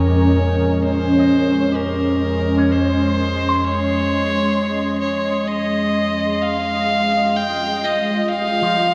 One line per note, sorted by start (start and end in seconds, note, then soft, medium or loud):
0.00 6.39 F2 medium
0.00 0.26 C#3 medium
0.00 8.94 G#3 medium
0.00 6.40 C#4 medium
0.00 2.16 A#4 medium
0.00 0.84 C#5 medium
0.00 8.94 D#5 medium
0.00 3.10 G5 soft
0.08 3.64 A#2 soft
0.82 1.78 C5 medium
1.19 2.75 D#5 medium
1.72 5.29 G4 medium
1.76 2.74 A#4 medium
1.90 8.08 C6 medium
2.57 3.67 C#4 medium
2.72 3.66 C5 medium
3.49 7.09 C6 medium
3.65 5.00 C#5 loud
5.01 5.49 C#5 medium
5.47 6.44 D#5 medium
6.42 7.38 F5 medium
6.61 8.94 F4 medium
7.36 7.86 G5 medium
7.47 8.94 G3 medium
7.84 8.30 D#5 medium
8.28 8.94 F5 medium
8.62 8.94 F3 medium